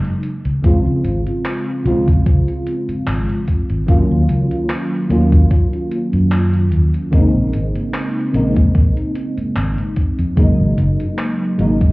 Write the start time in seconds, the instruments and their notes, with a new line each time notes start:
Already playing: fm electric piano C#3 F#3 G#3 A#3 D#4
0.05 closed hi-hat
0.23 closed hi-hat
0.45 fingered electric bass C#2, closed hi-hat
0.63 fm electric piano C#3 F3 G#3 C4 F4, muted fingered electric bass stroke, kick, closed hi-hat
0.86 fingered electric bass C#2
1.04 fingered electric bass G#1, closed hi-hat
1.27 closed hi-hat
1.45 clap, closed hi-hat
1.85 fingered electric bass C#2, fm electric piano C#3 F3 G#3 C4 F4, closed hi-hat
2.08 kick, closed hi-hat
2.26 fingered electric bass C#2, kick, closed hi-hat
2.48 closed hi-hat
2.67 closed hi-hat
2.89 muted fingered electric bass stroke, closed hi-hat
3.07 fingered electric bass G#1, clap, closed hi-hat
3.29 closed hi-hat
3.48 kick, closed hi-hat
3.70 fingered electric bass G#1, closed hi-hat
3.86 fm electric piano D#3 F#3 A#3 C#4 F4, muted fingered electric bass stroke, kick, closed hi-hat
4.11 fingered electric bass D#2
4.29 fingered electric bass C#2, closed hi-hat
4.51 closed hi-hat
4.69 clap, closed hi-hat
5.08 fingered electric bass D#2, fm electric piano D#3 F#3 A#3 C#4 F4, closed hi-hat
5.32 kick, closed hi-hat
5.51 kick, closed hi-hat
5.73 closed hi-hat
5.91 closed hi-hat
6.13 fingered electric bass F#2, closed hi-hat
6.32 clap, closed hi-hat
6.54 closed hi-hat
6.72 fingered electric bass D#2, closed hi-hat
6.94 closed hi-hat
7.11 fm electric piano C#3 G#3 A#3 C4 D#4, muted fingered electric bass stroke, kick, closed hi-hat
7.35 fingered electric bass A#1
7.53 fingered electric bass G#1, closed hi-hat
7.75 closed hi-hat
7.94 clap, closed hi-hat
8.33 fingered electric bass A#1, fm electric piano C#3 G#3 A#3 C4 D#4, closed hi-hat
8.56 kick, closed hi-hat
8.75 fingered electric bass A#1, kick, closed hi-hat
8.97 closed hi-hat
9.15 closed hi-hat
9.37 muted fingered electric bass stroke, closed hi-hat
9.56 fingered electric bass G#1, clap, closed hi-hat
9.78 closed hi-hat
9.96 kick, closed hi-hat
10.19 fingered electric bass F2, closed hi-hat
10.36 fm electric piano C#3 F#3 G#3 A#3 D#4, muted fingered electric bass stroke, kick, closed hi-hat
10.59 fingered electric bass G#1
10.78 fingered electric bass F#1, closed hi-hat
11.00 closed hi-hat
11.18 clap, closed hi-hat
11.58 fingered electric bass G#1, fm electric piano C#3 F#3 G#3 A#3 D#4, closed hi-hat
11.81 kick, closed hi-hat